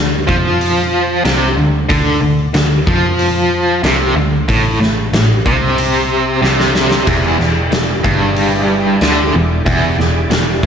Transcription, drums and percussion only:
0.29 kick
0.61 open hi-hat
1.25 snare, open hi-hat
1.90 kick, open hi-hat
2.54 snare, open hi-hat
2.87 kick
3.19 open hi-hat
3.84 snare, open hi-hat
4.49 kick, open hi-hat
4.82 snare
5.14 snare, open hi-hat
5.46 kick
5.78 open hi-hat
6.44 snare
6.60 snare
6.75 snare
6.91 snare
7.07 kick, open hi-hat, crash
7.40 snare
7.72 snare, open hi-hat
8.04 kick
8.36 open hi-hat
9.01 snare, open hi-hat
9.66 kick, open hi-hat
10.00 snare
10.31 snare, open hi-hat

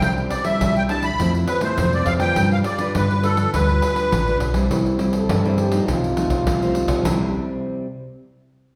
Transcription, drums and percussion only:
0.02 pandeiro
0.18 pandeiro
0.30 pandeiro
0.44 pandeiro
0.61 pandeiro
0.76 pandeiro
0.89 pandeiro
1.03 pandeiro
1.19 pandeiro
1.35 pandeiro
1.48 pandeiro
1.61 pandeiro
1.78 pandeiro
1.93 pandeiro
2.06 pandeiro
2.20 pandeiro
2.36 pandeiro
2.52 pandeiro
2.64 pandeiro
2.78 pandeiro
2.95 pandeiro
3.11 pandeiro
3.23 pandeiro
3.37 pandeiro
3.54 pandeiro
3.69 pandeiro
3.82 pandeiro
3.96 pandeiro
4.12 pandeiro
4.28 pandeiro
4.40 pandeiro
4.54 pandeiro
4.71 pandeiro
4.86 pandeiro
4.99 pandeiro
5.13 pandeiro
5.29 pandeiro
5.45 pandeiro
5.58 pandeiro
5.72 pandeiro
5.88 pandeiro
6.04 pandeiro
6.17 pandeiro
6.30 pandeiro
6.47 pandeiro
6.62 pandeiro
6.75 pandeiro
6.88 pandeiro
7.05 pandeiro

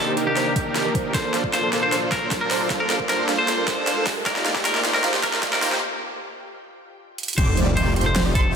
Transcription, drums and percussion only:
0.17 closed hi-hat
0.37 snare, closed hi-hat
0.56 kick, closed hi-hat
0.75 snare, closed hi-hat
0.95 kick, closed hi-hat
1.14 kick, snare, closed hi-hat
1.34 snare, closed hi-hat
1.44 kick
1.53 snare, closed hi-hat
1.73 snare, closed hi-hat
1.92 snare, closed hi-hat
2.12 kick, snare, closed hi-hat
2.31 kick, snare, closed hi-hat
2.51 snare, open hi-hat
2.70 kick, snare, closed hi-hat
2.90 snare, closed hi-hat
3.00 kick
3.09 snare, closed hi-hat
3.29 snare, closed hi-hat
3.48 snare, closed hi-hat
3.68 kick, snare, closed hi-hat
3.87 snare, closed hi-hat
4.07 kick, snare, open hi-hat
4.26 kick, snare, closed hi-hat
4.36 snare
4.46 snare, closed hi-hat
4.56 kick, snare
4.65 snare, closed hi-hat
4.75 snare
4.85 snare, closed hi-hat
4.94 snare
5.04 snare, closed hi-hat
5.14 snare
5.23 kick, snare, closed hi-hat
5.33 snare
5.43 kick, snare, closed hi-hat
5.53 snare
5.62 snare, open hi-hat
5.72 snare
7.18 closed hi-hat
7.23 closed hi-hat
7.28 closed hi-hat
7.33 closed hi-hat
7.38 kick, closed hi-hat, crash
7.57 closed hi-hat
7.77 closed hi-hat
7.96 closed hi-hat
8.01 closed hi-hat
8.16 snare, closed hi-hat
8.35 kick, closed hi-hat

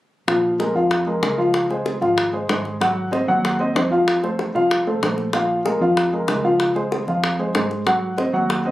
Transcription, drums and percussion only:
0.28 high bongo
0.60 high bongo
0.91 high bongo
1.23 high bongo, low bongo
1.54 high bongo
1.70 high bongo
1.86 high bongo
2.02 high bongo
2.18 high bongo
2.49 high bongo, low bongo
2.65 high bongo
2.81 high bongo
3.13 high bongo
3.45 high bongo
3.76 high bongo, low bongo
4.08 high bongo
4.24 high bongo
4.39 high bongo
4.56 high bongo
4.71 high bongo
5.03 high bongo, low bongo
5.18 high bongo
5.33 high bongo
5.66 high bongo
5.97 high bongo
6.28 high bongo, low bongo
6.60 high bongo
6.76 high bongo
6.92 high bongo
7.08 high bongo
7.24 high bongo
7.55 high bongo, low bongo
7.71 high bongo
7.87 high bongo
8.18 high bongo
8.50 high bongo

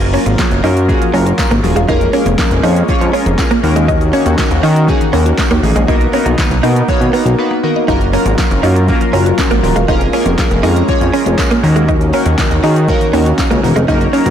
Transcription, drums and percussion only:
0.01 closed hi-hat, shaker
0.14 open hi-hat, shaker
0.26 closed hi-hat, shaker
0.39 kick, snare, clap, tambourine, shaker
0.51 closed hi-hat, shaker
0.64 open hi-hat, shaker
0.77 closed hi-hat, shaker
0.89 kick, shaker
1.02 closed hi-hat, shaker
1.14 open hi-hat, shaker
1.27 closed hi-hat, shaker
1.38 kick, snare, clap, tambourine, shaker
1.51 closed hi-hat, shaker
1.64 open hi-hat, shaker
1.76 closed hi-hat, shaker
1.89 kick, shaker
2.01 closed hi-hat, shaker
2.13 open hi-hat, shaker
2.26 closed hi-hat, shaker
2.38 kick, snare, clap, tambourine, shaker
2.51 closed hi-hat, shaker
2.64 open hi-hat, shaker
2.76 closed hi-hat, shaker
2.88 kick, shaker
3.01 closed hi-hat, shaker
3.14 open hi-hat, shaker
3.26 closed hi-hat, shaker
3.38 kick, snare, clap, tambourine, shaker
3.51 closed hi-hat, shaker
3.64 open hi-hat, shaker
3.76 closed hi-hat, shaker
3.89 kick, shaker
4.01 closed hi-hat, shaker
4.13 open hi-hat, shaker
4.26 closed hi-hat, shaker
4.38 kick, snare, clap, tambourine, shaker
4.51 closed hi-hat, shaker
4.63 open hi-hat, shaker
4.76 closed hi-hat, shaker
4.88 kick, shaker
5.01 closed hi-hat, shaker
5.13 open hi-hat, shaker
5.26 closed hi-hat, shaker
5.38 kick, snare, clap, tambourine, shaker
5.51 closed hi-hat, shaker
5.64 open hi-hat, shaker
5.76 closed hi-hat, shaker
5.88 kick, shaker
6.01 closed hi-hat, shaker
6.13 open hi-hat, shaker
6.26 closed hi-hat, shaker
6.38 kick, snare, clap, tambourine, shaker
6.51 closed hi-hat, shaker
6.63 open hi-hat, shaker
6.76 closed hi-hat, shaker
6.88 kick, shaker
7.01 closed hi-hat, shaker
7.14 open hi-hat, shaker
7.26 closed hi-hat, shaker
7.88 kick, shaker
8.01 closed hi-hat, shaker
8.13 open hi-hat, shaker
8.26 closed hi-hat, shaker
8.38 kick, snare, clap, tambourine, shaker
8.51 closed hi-hat, shaker
8.63 open hi-hat, shaker
8.76 closed hi-hat, shaker
8.88 kick, shaker
9.01 closed hi-hat, shaker
9.14 open hi-hat, shaker
9.26 closed hi-hat, shaker
9.38 kick, snare, clap, tambourine, shaker
9.51 closed hi-hat, shaker
9.64 open hi-hat, shaker
9.76 closed hi-hat, shaker
9.89 kick, shaker
10.01 closed hi-hat, shaker
10.13 open hi-hat, shaker
10.26 closed hi-hat, shaker
10.38 kick, snare, clap, tambourine, shaker
10.51 closed hi-hat, shaker
10.64 open hi-hat, shaker
10.76 closed hi-hat, shaker
10.88 kick, shaker
11.01 closed hi-hat, shaker
11.14 open hi-hat, shaker
11.26 closed hi-hat, shaker
11.38 kick, snare, clap, tambourine, shaker
11.51 closed hi-hat, shaker
11.64 open hi-hat, shaker
11.76 closed hi-hat, shaker
11.89 kick, shaker
12.01 closed hi-hat, shaker
12.13 open hi-hat, shaker
12.26 closed hi-hat, shaker
12.38 kick, snare, clap, tambourine, shaker
12.51 closed hi-hat, shaker
12.63 open hi-hat, shaker
12.76 closed hi-hat, shaker
12.88 kick, shaker
13.01 closed hi-hat, shaker
13.13 open hi-hat, shaker
13.26 closed hi-hat, shaker
13.38 kick, snare, clap, tambourine, shaker
13.51 closed hi-hat, shaker
13.64 open hi-hat, shaker
13.76 closed hi-hat, shaker
13.89 kick, shaker
14.01 closed hi-hat, shaker
14.13 open hi-hat, shaker
14.26 closed hi-hat, shaker

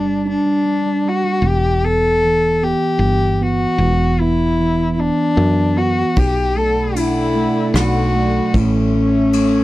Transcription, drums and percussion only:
6.16 kick, ride
6.96 ride
7.75 cross-stick, ride
8.54 kick, ride
9.33 ride

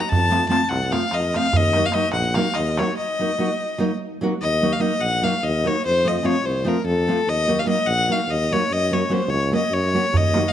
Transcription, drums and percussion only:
0.02 darbuka tek
0.12 darbuka dum
0.21 darbuka tek
0.32 darbuka tek
0.43 darbuka tek
0.52 darbuka tek
0.71 darbuka tek
0.81 darbuka tek
0.92 darbuka tek
1.03 darbuka tek
1.11 darbuka tek
1.34 darbuka tek
1.45 darbuka tek
1.53 darbuka dum
1.63 darbuka tek
1.73 darbuka tek
1.83 darbuka tek
1.92 darbuka tek
2.12 darbuka tek
2.24 darbuka tek
2.34 darbuka tek
2.44 darbuka tek
2.54 darbuka tek
2.77 darbuka tek
2.88 darbuka tek
10.14 darbuka dum
10.24 darbuka tek
10.34 darbuka tek
10.43 darbuka tek

